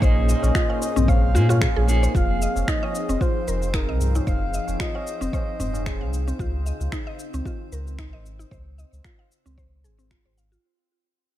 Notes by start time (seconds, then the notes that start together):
Already playing: A#2 A#3 C#4 G#4 C5
0.00 A#1 A#3 D#4 G#4 C5 D#5, kick, shaker
0.17 tabla tin
0.29 D#5, shaker
0.43 A#1, tabla na, shaker
0.55 F4, finger snap, kick, shaker
0.69 F5, tabla na
0.82 D#5, tabla tin, shaker
0.96 A#1 C4, tabla ge, shaker
1.08 C5 F5, kick, tabla na, shaker
1.34 A#2 A#3 D#4 F4 G#4, tabla tin, shaker
1.49 F4, tabla na, tabla tin, tabla ge, shaker
1.61 G#4, finger snap, kick, shaker
1.76 A#1 G#4, tabla na, tabla tin
1.88 A#3 D#4 G#4, shaker
2.03 C5, shaker
2.15 F1 F3 C4 F4 C5 F5, kick, shaker
2.22 C4
2.42 D#5, shaker
2.56 F1, tabla na, shaker
2.68 D#4 D#5, finger snap, kick, shaker
2.82 D#4 D#5 F5, tabla na
2.95 tabla tin, shaker
3.09 F1 C4, shaker
3.21 F4 C5, kick, shaker
3.48 F1 A#4, shaker
3.62 shaker
3.74 D#4 A#4, finger snap, kick, shaker
3.88 C2 D#5
4.00 tabla ge, shaker
4.15 D#4, tabla na, shaker
4.27 F1 C5 F5, kick, shaker
4.42 tabla tin
4.54 D#5, shaker
4.67 F1, tabla na, shaker
4.80 F4 D#5, finger snap, kick, shaker
4.95 F5, tabla na
5.07 shaker
5.21 F1 C4, shaker
5.33 C5 D#5, kick, tabla na, shaker
5.60 F1 C4, tabla tin, tabla ge, shaker
5.74 tabla na, shaker
5.86 G#4 D#5, finger snap, kick, shaker
6.01 C2 F5, tabla tin
6.14 shaker
6.28 C4, shaker
6.39 C#2 C#3 F4, kick, shaker
6.66 D#5, shaker
6.80 C#2, shaker
6.92 D#4, finger snap, kick, shaker
6.97 C4
7.07 D#5
7.19 shaker
7.34 C#2 C4, shaker
7.46 F4, kick, shaker
7.72 C#2 A#4, shaker
7.87 shaker
7.99 D#4, finger snap, kick, shaker
8.08 C5
8.13 G#1 D#5
8.26 shaker
8.39 D#4, shaker
8.51 C#2 C5, kick, shaker
8.78 D#5, shaker
8.93 C#2, shaker
9.04 F4, finger snap, kick, shaker
9.19 F5
9.32 shaker
9.46 C#2 C4, shaker
9.58 C5, kick, shaker
9.84 G#1 G#4, shaker
9.99 C4, shaker
10.11 F4, finger snap, kick, shaker
10.26 G#1 C5
10.38 F5, shaker
10.52 F4, shaker